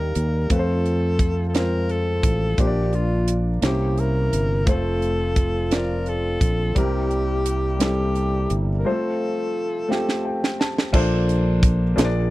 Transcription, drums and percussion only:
0.15 closed hi-hat
0.50 kick, closed hi-hat
0.86 closed hi-hat
1.19 kick, closed hi-hat
1.55 snare, closed hi-hat
1.89 closed hi-hat
2.23 kick, closed hi-hat
2.58 kick, closed hi-hat
2.93 closed hi-hat
3.28 closed hi-hat
3.62 snare, closed hi-hat
3.98 closed hi-hat
4.33 closed hi-hat
4.67 kick, closed hi-hat
5.02 closed hi-hat
5.36 kick, closed hi-hat
5.71 snare, closed hi-hat
6.06 closed hi-hat
6.41 kick, closed hi-hat
6.76 kick, closed hi-hat
7.11 closed hi-hat
7.46 closed hi-hat
7.80 snare, closed hi-hat
8.15 closed hi-hat
8.50 closed hi-hat
9.92 snare
10.09 snare
10.44 snare
10.61 snare
10.78 snare
10.94 kick, crash
11.29 closed hi-hat
11.63 kick, closed hi-hat
11.98 snare, closed hi-hat

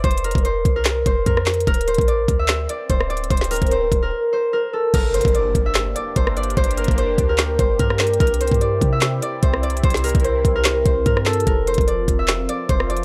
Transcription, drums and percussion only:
0.04 kick, closed hi-hat
0.11 closed hi-hat
0.18 closed hi-hat
0.24 closed hi-hat
0.31 kick, closed hi-hat
0.38 closed hi-hat
0.45 closed hi-hat
0.65 kick, closed hi-hat
0.85 cross-stick, snare, clap, closed hi-hat
1.06 kick, closed hi-hat
1.26 kick, closed hi-hat
1.37 cross-stick
1.46 snare, clap, closed hi-hat
1.54 closed hi-hat
1.60 closed hi-hat
1.67 kick, closed hi-hat
1.74 closed hi-hat
1.81 closed hi-hat
1.88 closed hi-hat
1.94 closed hi-hat
1.98 kick, closed hi-hat
2.08 closed hi-hat
2.28 kick, closed hi-hat
2.48 cross-stick, snare, clap, closed hi-hat
2.69 closed hi-hat
2.90 kick, closed hi-hat
3.01 cross-stick
3.10 closed hi-hat
3.17 closed hi-hat
3.24 closed hi-hat
3.31 kick, closed hi-hat
3.37 snare, closed hi-hat
3.44 closed hi-hat
3.51 closed hi-hat, open hi-hat
3.56 closed hi-hat
3.62 kick, closed hi-hat
3.67 closed hi-hat
3.71 closed hi-hat
3.92 kick, closed hi-hat
4.94 kick, closed hi-hat, crash
5.14 closed hi-hat
5.21 kick, closed hi-hat
5.28 closed hi-hat
5.35 closed hi-hat
5.55 kick, closed hi-hat
5.75 cross-stick, snare, clap, closed hi-hat
5.96 closed hi-hat
6.16 kick, closed hi-hat
6.27 cross-stick
6.37 closed hi-hat
6.43 closed hi-hat
6.50 closed hi-hat
6.57 kick, closed hi-hat
6.64 closed hi-hat
6.71 closed hi-hat
6.78 closed hi-hat
6.84 kick, closed hi-hat
6.91 closed hi-hat
6.98 closed hi-hat
7.18 kick, closed hi-hat
7.38 cross-stick, snare, clap, closed hi-hat
7.59 kick, closed hi-hat
7.79 kick, closed hi-hat
7.90 cross-stick
7.99 snare, clap, closed hi-hat
8.07 closed hi-hat
8.14 closed hi-hat
8.20 kick, closed hi-hat
8.27 closed hi-hat
8.34 closed hi-hat
8.41 closed hi-hat
8.47 closed hi-hat
8.52 kick, closed hi-hat
8.61 closed hi-hat
8.81 kick, closed hi-hat
9.01 cross-stick, snare, clap, closed hi-hat
9.22 closed hi-hat
9.43 kick, closed hi-hat
9.54 cross-stick
9.63 closed hi-hat
9.70 closed hi-hat
9.77 closed hi-hat
9.84 kick, closed hi-hat
9.90 snare, closed hi-hat
9.97 closed hi-hat
10.04 closed hi-hat, open hi-hat
10.09 closed hi-hat
10.15 kick, closed hi-hat
10.20 closed hi-hat
10.25 closed hi-hat
10.45 kick, closed hi-hat
10.64 snare, clap, closed hi-hat
10.86 kick, closed hi-hat
11.06 kick, closed hi-hat
11.17 cross-stick
11.26 snare, clap, closed hi-hat
11.33 closed hi-hat
11.40 closed hi-hat
11.47 kick, closed hi-hat
11.67 closed hi-hat
11.74 kick, closed hi-hat
11.81 closed hi-hat
11.88 closed hi-hat
12.08 kick, closed hi-hat
12.28 cross-stick, snare, clap, closed hi-hat
12.49 closed hi-hat
12.69 kick, closed hi-hat
12.80 cross-stick
12.90 closed hi-hat
12.97 closed hi-hat

